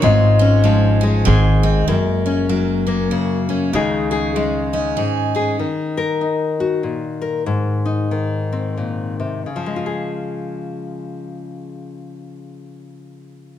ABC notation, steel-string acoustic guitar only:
X:1
M:3/4
L:1/8
Q:"Swing" 1/4=96
K:Db
V:1 name="Steel-string acoustic guitar"
A, D A, D E, C | B, D B, D G D | E, D A, D A D | z6 |
z6 | z6 | z6 |]